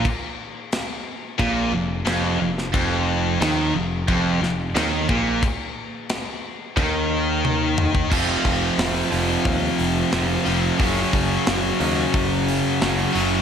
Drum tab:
CC |x---x---x---x---|x---x---x---x---|x---x---x-------|x---------------|
HH |----------------|----------------|----------------|--o-o-o-o-o-o-o-|
SD |----o-------o--o|----o-----o-o---|----o-----------|----o-------o---|
T1 |----------------|----------------|------------o---|----------------|
T2 |----------------|----------------|--------------o-|----------------|
BD |o-------o-------|o-------o-----o-|o-------o------o|o-o-----o-------|

CC |----------------|
HH |o-o-o-o-o-o-o-o-|
SD |----o-------o---|
T1 |----------------|
T2 |----------------|
BD |o-o-----o-------|